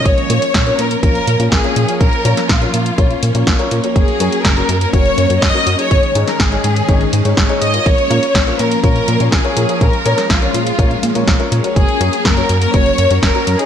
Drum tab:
HH |xxxxxxxxxxxxxxxx|xxxxxxxxxxxxxxxx|xxxxxxxxxxxxxxxx|xxxxxxxxxxxxxxxx|
SD |----o-------o---|---oo-------o---|----o-------o---|---oo-------o---|
BD |o---o---o---o---|o---o---o---o---|o---o---o---o---|o---o---o---o---|

HH |xxxxxxxxxxxxxxxx|xxxxxxxxxxxxxxxx|xxxxxxxxxxxxxxxx|
SD |----o-------o---|---oo-------o---|----o-------o---|
BD |o---o---o---o---|o---o---o---o---|o---o---o---o---|